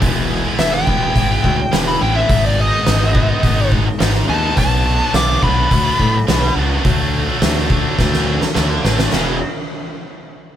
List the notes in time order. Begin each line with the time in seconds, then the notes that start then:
0.01 E1 E3 G#3 B3 E4, kick, open hi-hat
0.30 G#3
0.44 G#3 B3 E4
0.58 E1 E3 G#3 B3 E4 E5, snare, open hi-hat
0.73 G5
0.87 E1 E3 G#3 B3 E4, kick
1.16 G#1 E3 G#3 B3 E4, kick, open hi-hat
1.29 G#3 B3 E4
1.44 D2 G#3, kick
1.58 muted distorted electric guitar stroke
1.72 E1 E3 G#3 B3 E4, snare, open hi-hat
1.87 B5, muted distorted electric guitar stroke
2.00 A1 E3 G#3 B3 E4 G5
2.15 G#3 B3 E4 E5
2.28 G#1 G#2 D#3 G#3 B3 D#4, kick, open hi-hat
2.46 D5
2.58 G#3 D#5
2.72 G#3 B3 D#4
2.86 G#1 G#2 D#3 G#3 B3 D#4, snare, open hi-hat
3.14 D#3 G#3 B3 D#4, kick
3.43 G#1 D#3 G#3 B3 D#4, kick, open hi-hat
3.57 G#3 B3 D#4
3.72 G#3, kick
3.85 muted distorted electric guitar stroke
3.99 G#1 G#2 D#3 G#3 B3 D#4, snare, open hi-hat
4.14 muted distorted electric guitar stroke, snare
4.27 D#2 D#3 G#3 B3 D#4 A5
4.41 G#3 B3 D#4
4.56 B1 B2 F#3 B3 D4 A5, kick, open hi-hat
4.99 F#3 B3 D4
5.13 B1 B2 F#3 B3 D4 D6, snare, open hi-hat
5.42 B1 B2 F#3 B3 D4 B5, kick
5.71 D2 B2 F#3 B3 D4, kick, open hi-hat
5.85 F#3 B3 D4
5.99 A2, kick
6.14 muted distorted electric guitar stroke
6.27 B1 B2 F#3 B3 D4, snare, open hi-hat
6.43 muted distorted electric guitar stroke
6.56 C#2 B2 F#3 B3 D4
6.71 F#3 B3 D4
6.84 D2 D3 F#3 A3 D4, kick, open hi-hat
7.27 F#3 A3 D4
7.41 D2 D3 F#3 A3 D4, snare, open hi-hat
7.69 D3 F#3 A3 D4, kick
7.98 D2 D3 F#3 A3 D4, kick, snare
8.12 F#3 A3 D4, snare
8.41 muted distorted electric guitar stroke, snare
8.55 D2 D3 F#3 A3 D4, snare
8.69 muted distorted electric guitar stroke
8.82 A1 D3 F#3 A3 D4, snare
8.97 F#3 A3 D4, snare
9.11 E1 E2 B2 E3, snare, china